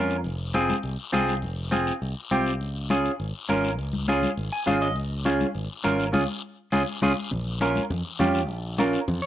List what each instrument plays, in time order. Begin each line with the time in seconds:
Already playing: fingered electric bass F2, clean electric guitar C#4 F4 A#4
0.10 short guiro
0.24 fingered electric bass F1, high conga, long guiro
0.54 clean electric guitar C4 F4 G#4, high conga, short guiro
0.69 high conga, short guiro
0.83 fingered electric bass C2, high conga, long guiro
1.12 fingered electric bass C2, clean electric guitar C4 F4 G#4, high conga, short guiro
1.28 short guiro
1.42 fingered electric bass F1, high conga, long guiro
1.71 clean electric guitar C4 F4 G#4, high conga, short guiro
1.87 short guiro
2.02 fingered electric bass C2, high conga, long guiro
2.31 fingered electric bass C2, clean electric guitar C4 F4 G4, high conga, short guiro
2.46 short guiro
2.61 fingered electric bass C#2, high conga, long guiro
2.90 clean electric guitar C#4 F4 G#4, high conga, short guiro
3.05 short guiro
3.20 fingered electric bass G#1, high conga, long guiro
3.49 fingered electric bass G#1, clean electric guitar C#4 F4 A#4, high conga, short guiro
3.64 short guiro
3.79 fingered electric bass C#2, high conga, long guiro
3.93 high conga
4.08 clean electric guitar C#4 F4 G#4, high conga, short guiro
4.23 high conga, short guiro
4.37 fingered electric bass G#1, high conga, long guiro
4.52 clean electric guitar G#5
4.67 fingered electric bass G#1, clean electric guitar C#4 F4 G#4 F5, high conga, short guiro
4.81 clean electric guitar D#5, short guiro
4.96 fingered electric bass C#2, high conga, long guiro
5.25 clean electric guitar C#4 F4 G#4, high conga, short guiro
5.40 high conga, short guiro
5.55 fingered electric bass G#1, high conga, long guiro
5.84 fingered electric bass G#1, clean electric guitar C#4 F4 A#4, high conga, short guiro
5.99 short guiro
6.13 fingered electric bass C#2, clean electric guitar C#4 F4 G#4, high conga, long guiro
6.72 fingered electric bass C#2, clean electric guitar C#4 F4 G#4, high conga, long guiro
7.02 fingered electric bass C#2, clean electric guitar C#4 F4 G#4, high conga
7.31 fingered electric bass A#1, high conga, low conga, long guiro
7.61 clean electric guitar C#4 F4 A#4, high conga, short guiro
7.75 high conga, short guiro
7.90 fingered electric bass F2, high conga, low conga, long guiro
8.19 fingered electric bass F2, clean electric guitar C#4 F4 G4, high conga, low conga, short guiro
8.34 short guiro
8.49 fingered electric bass A#1, high conga, long guiro
8.78 clean electric guitar C#4 F4 A#4, high conga, short guiro
8.93 short guiro
9.08 fingered electric bass F2, high conga, low conga, long guiro
9.22 clean electric guitar C#5